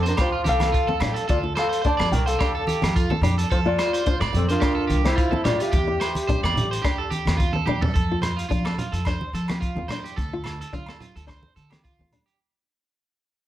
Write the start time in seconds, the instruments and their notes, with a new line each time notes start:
Already playing: upright bass F2
0.03 clean electric guitar C5, closed hi-hat
0.08 trumpet D4, clean electric guitar D4 A#4
0.17 trumpet F4, clean electric guitar G4, muted nylon-string guitar stroke, kick, cross-stick, closed hi-hat, low agogo
0.21 clean electric guitar F4 C5
0.32 clean electric guitar F4
0.44 upright bass C2, clean electric guitar G4, trumpet A4, closed hi-hat, high conga
0.49 clean electric guitar A4 F5
0.60 nylon-string guitar C4, cross-stick, closed hi-hat, high conga, low agogo
0.72 clean electric guitar F4, kick, closed hi-hat
0.87 nylon-string guitar C4, clean electric guitar A4, high conga
1.00 upright bass A2, nylon-string guitar D4, clean electric guitar G4, cross-stick, closed hi-hat, low conga, low agogo
1.14 clean electric guitar A4, closed hi-hat
1.28 upright bass D2, trumpet F4, clean electric guitar F4 A4 D5, kick, closed hi-hat
1.43 nylon-string guitar F4
1.55 trumpet A4, clean electric guitar C5 F5, cross-stick, closed hi-hat, low agogo
1.60 clean electric guitar A4
1.69 clean electric guitar C5, closed hi-hat
1.82 nylon-string guitar D4, clean electric guitar C5, trumpet D5, kick, closed hi-hat
1.86 clean electric guitar D5 A5
1.97 upright bass F2, nylon-string guitar C4, clean electric guitar D5, cross-stick, low agogo
2.12 upright bass C2, trumpet A#4, clean electric guitar A#4 G5, closed hi-hat, low conga
2.26 trumpet A4, clean electric guitar A4 C5 F5, closed hi-hat
2.39 nylon-string guitar D4, clean electric guitar G4, kick, cross-stick, closed hi-hat, low agogo
2.55 clean electric guitar A4
2.67 clean electric guitar G4, closed hi-hat, high conga
2.82 upright bass F2, nylon-string guitar C4, cross-stick, closed hi-hat, high conga, low agogo
2.96 clean electric guitar F4, kick, closed hi-hat
3.10 nylon-string guitar C4, clean electric guitar A4, high conga
3.21 upright bass F2, nylon-string guitar D4, clean electric guitar G4, closed hi-hat, low conga, low agogo
3.38 clean electric guitar A4, closed hi-hat
3.50 upright bass F2, clean electric guitar F4 A4 C5, trumpet F4, kick, closed hi-hat
3.66 nylon-string guitar F4, clean electric guitar F4 D5, trumpet F4
3.78 clean electric guitar C5, cross-stick, closed hi-hat, low agogo
3.93 clean electric guitar C5, closed hi-hat
4.06 nylon-string guitar D4, clean electric guitar F4 C5, trumpet F4, kick, closed hi-hat
4.20 upright bass A2, nylon-string guitar C4, clean electric guitar D5, cross-stick, low agogo
4.33 upright bass F2, clean electric guitar C4 A4, trumpet C4, closed hi-hat, low conga
4.49 clean electric guitar D4 A#4 C5, trumpet F4, closed hi-hat
4.60 nylon-string guitar D4, clean electric guitar G4, kick, cross-stick, closed hi-hat, low agogo
4.75 clean electric guitar A4
4.87 upright bass C2, clean electric guitar G4, closed hi-hat, high conga
5.05 nylon-string guitar C4, clean electric guitar E4 C5, trumpet E4, cross-stick, closed hi-hat, high conga, low agogo
5.15 clean electric guitar F4, kick, closed hi-hat
5.31 nylon-string guitar C4, clean electric guitar A4, high conga
5.44 upright bass A2, nylon-string guitar D4, clean electric guitar F4 G4 D5, trumpet F4, cross-stick, closed hi-hat, low conga, low agogo
5.60 clean electric guitar F4 G4 E5, trumpet G4, closed hi-hat
5.72 upright bass E2, clean electric guitar G4, kick, closed hi-hat
5.87 nylon-string guitar E4
6.00 clean electric guitar C5, cross-stick, closed hi-hat, low agogo
6.15 closed hi-hat, high conga
6.27 nylon-string guitar D4, clean electric guitar C5, kick, closed hi-hat, low conga
6.43 upright bass E2, nylon-string guitar C4, clean electric guitar D5, cross-stick, low agogo
6.55 upright bass A1, closed hi-hat, low conga
6.71 clean electric guitar C5, closed hi-hat
6.82 nylon-string guitar D4, clean electric guitar G4, kick, cross-stick, closed hi-hat, low agogo
6.98 clean electric guitar A4
7.10 clean electric guitar G4, closed hi-hat, high conga
7.26 upright bass E2, nylon-string guitar C4, cross-stick, closed hi-hat, high conga, low agogo
7.37 clean electric guitar F4, kick, closed hi-hat, high conga
7.53 nylon-string guitar C4, clean electric guitar A4, high conga
7.66 upright bass E2, nylon-string guitar D4, clean electric guitar G4, low conga, low agogo
7.81 clean electric guitar A4, floor tom, low conga
7.94 upright bass F2, clean electric guitar A4, kick, closed hi-hat
8.12 nylon-string guitar F4
8.22 clean electric guitar C5, cross-stick, closed hi-hat, low conga, low agogo
8.37 clean electric guitar F4, closed hi-hat
8.49 upright bass F3, nylon-string guitar D4, clean electric guitar F4, kick, closed hi-hat, low conga
8.65 nylon-string guitar C4, clean electric guitar A4, cross-stick, low agogo
8.78 clean electric guitar F4, closed hi-hat, low conga
8.92 upright bass F2, clean electric guitar A4, closed hi-hat
9.05 nylon-string guitar D4, clean electric guitar C5, kick, cross-stick, closed hi-hat, low agogo
9.21 high conga
9.33 upright bass F3, clean electric guitar A4, closed hi-hat
9.48 nylon-string guitar C4, clean electric guitar G4, cross-stick, closed hi-hat, high conga, low agogo
9.60 clean electric guitar F4, kick, closed hi-hat
9.75 upright bass E2, nylon-string guitar C4, high conga
9.88 nylon-string guitar D4, clean electric guitar C5, cross-stick, closed hi-hat, low conga, low agogo
10.04 clean electric guitar G4, closed hi-hat
10.16 upright bass D2, clean electric guitar A4, kick, closed hi-hat
10.33 nylon-string guitar F4
10.44 clean electric guitar A4, cross-stick, closed hi-hat, low conga, low agogo
10.61 clean electric guitar A4, closed hi-hat
10.73 upright bass D3, nylon-string guitar D4, clean electric guitar F4, kick, closed hi-hat, low conga
10.86 nylon-string guitar C4, clean electric guitar A4, cross-stick, low agogo
11.00 clean electric guitar F4, closed hi-hat, low conga
11.16 upright bass D2, clean electric guitar A4, closed hi-hat
11.27 nylon-string guitar D4, clean electric guitar C5, kick, cross-stick, closed hi-hat, low agogo
11.43 high conga
11.56 upright bass D3, clean electric guitar A4, closed hi-hat
11.70 nylon-string guitar C4, clean electric guitar G4, cross-stick, closed hi-hat, high conga, low agogo
11.84 clean electric guitar F4, kick, closed hi-hat
11.99 upright bass D2, nylon-string guitar C4, high conga
12.12 nylon-string guitar D4, closed hi-hat, low conga, low agogo
12.26 clean electric guitar G4, closed hi-hat